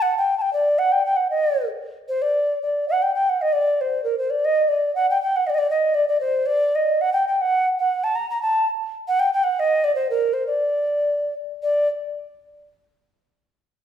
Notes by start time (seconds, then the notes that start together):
0.02 F#5
0.17 G5
0.38 G5 A5
0.53 D5
0.78 F#5
0.92 G5
1.05 G5
1.16 F#5
1.30 D#5
2.08 C5
2.22 D5
2.62 D5
2.88 F#5
3.02 G5
3.14 G5
3.29 F#5
3.41 D#5
3.52 D5
3.81 C5
4.04 A#4
4.18 C5
4.30 D5
4.45 D#5
4.68 D5
4.95 F#5
5.10 G5
5.22 G5
5.36 F#5
5.46 D5 D#5
5.54 D5 D#5
5.70 D#5
5.94 D5
6.08 D5
6.20 C5
6.46 D5
6.75 D#5
7.01 F#5
7.13 G5
7.27 G5
7.41 F#5
7.79 F#5
8.03 A5
8.15 A#5
8.30 A#5
8.42 A5
9.07 F#5
9.19 G5
9.33 G5
9.43 F#5
9.59 D#5
9.84 D5
9.95 C5
10.10 A#4
10.33 C5
10.46 D5
11.62 D5